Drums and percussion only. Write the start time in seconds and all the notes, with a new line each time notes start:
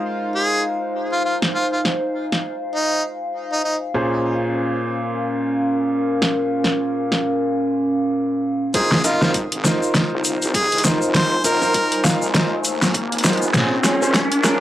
1.42 snare
1.85 snare
2.32 snare
6.22 snare
6.64 snare
7.12 snare
8.74 kick, closed hi-hat, shaker
8.92 snare
9.04 closed hi-hat, shaker
9.22 snare, shaker
9.34 kick, closed hi-hat, shaker
9.52 closed hi-hat
9.65 snare, shaker
9.83 shaker
9.94 kick, snare, closed hi-hat, shaker
10.24 closed hi-hat, shaker
10.42 closed hi-hat, shaker
10.54 kick, closed hi-hat, shaker
10.72 closed hi-hat
10.78 closed hi-hat
10.84 snare, closed hi-hat, shaker
11.02 shaker
11.14 kick, snare, closed hi-hat, shaker
11.44 closed hi-hat, shaker
11.62 shaker
11.74 kick, closed hi-hat, shaker
11.92 closed hi-hat
12.04 snare, shaker
12.22 shaker
12.34 kick, snare, closed hi-hat, shaker
12.64 closed hi-hat, shaker
12.82 snare, closed hi-hat, shaker
12.94 kick, closed hi-hat, shaker
13.12 closed hi-hat
13.18 closed hi-hat
13.24 snare, closed hi-hat, shaker
13.29 closed hi-hat
13.33 closed hi-hat
13.37 closed hi-hat
13.42 shaker
13.54 kick, snare, closed hi-hat, shaker
13.84 snare, closed hi-hat, shaker
14.02 shaker
14.14 kick, snare, closed hi-hat, shaker
14.32 closed hi-hat
14.44 snare, shaker